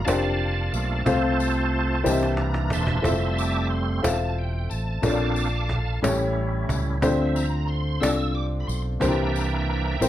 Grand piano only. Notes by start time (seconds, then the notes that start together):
Already playing: G2 D4 F4 G4 A#4 D5
0.06 D4 F4 G4 A#4 C5
1.06 C3 C4 F4 A4 C5 F5
2.03 C3 E4 G4 A#4 C5 D#5
2.11 E5
3.02 E4 F4 A4 C5 E5
4.02 F4 A4 C5 E5 F5
5.02 A#2 D4 F4 A4 A#4 C#5
5.10 D5
6.03 A2 C#4 E4 G4 A4 C#5
7.02 D3 C4 D4 F4 A4 C5
8.01 C4 D4 F4 A4 D5
9.00 C3 C4 D4 G4 A#4 C5
9.07 E4
10.01 C4 E4 G4 A#4 C5